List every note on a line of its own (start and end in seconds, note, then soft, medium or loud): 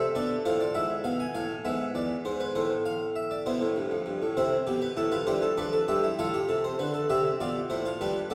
0.00 1.61 A3 medium
0.15 0.34 B2 medium
0.15 0.34 D4 medium
0.15 0.34 D5 loud
0.45 0.64 A2 medium
0.45 0.64 F4 medium
0.45 0.60 C5 medium
0.61 0.75 D5 medium
0.75 0.93 G#2 medium
0.75 3.42 E4 medium
0.75 0.93 E5 medium
1.04 1.23 B2 medium
1.04 1.19 F5 medium
1.20 1.35 G#5 loud
1.35 1.53 A2 medium
1.35 1.53 F5 medium
1.65 1.84 G#2 medium
1.65 4.33 B3 medium
1.65 1.84 E5 medium
1.95 2.14 E2 medium
1.95 2.14 D5 medium
2.25 2.44 G#2 medium
2.25 2.40 C5 medium
2.40 2.55 B4 medium
2.55 3.43 A2 medium
2.55 2.74 C5 medium
2.86 3.04 F5 medium
3.16 3.30 E5 medium
3.31 3.45 D5 medium
3.46 3.61 B2 medium
3.46 4.35 E4 medium
3.46 4.34 C5 medium
3.61 3.76 A2 medium
3.76 3.91 G2 medium
3.91 4.06 F2 medium
4.06 4.21 G2 medium
4.22 4.37 A2 medium
4.37 4.56 C3 medium
4.37 5.25 C4 medium
4.37 4.56 E4 medium
4.37 4.81 C5 medium
4.67 4.86 B2 medium
4.67 4.86 G4 medium
4.82 4.97 B4 medium
4.97 5.16 A2 medium
4.97 5.12 E4 medium
4.97 5.12 A4 medium
5.12 5.27 F4 medium
5.12 5.27 B4 medium
5.27 5.46 G2 medium
5.27 5.46 E4 medium
5.27 5.42 G4 medium
5.27 5.46 C5 medium
5.42 5.57 A4 medium
5.57 5.77 F2 medium
5.57 5.77 D4 medium
5.57 5.73 B4 medium
5.57 5.77 D5 medium
5.73 5.88 A4 medium
5.88 6.07 G2 medium
5.88 6.07 C4 medium
5.88 6.03 G4 medium
5.88 6.07 E5 medium
6.04 6.19 E4 medium
6.19 6.38 A2 medium
6.19 7.07 A3 medium
6.19 6.34 F4 medium
6.19 7.07 F5 medium
6.34 6.49 G4 medium
6.49 6.68 C3 medium
6.49 6.64 A4 medium
6.64 6.79 C5 medium
6.79 6.98 D3 medium
6.79 6.94 B4 medium
6.94 7.09 A4 medium
7.10 7.28 C3 medium
7.10 7.98 C4 medium
7.10 7.28 G4 medium
7.10 7.28 E5 medium
7.41 7.59 B2 medium
7.41 7.59 F4 medium
7.41 7.59 D5 medium
7.70 7.89 A2 medium
7.70 7.85 E4 medium
7.70 7.89 C5 medium
7.86 8.00 F4 medium
8.01 8.19 G2 medium
8.01 8.19 D4 medium
8.01 8.19 G4 medium
8.01 8.19 B4 medium
8.30 8.34 G2 medium
8.30 8.34 B3 medium
8.30 8.34 A4 medium
8.30 8.34 D5 medium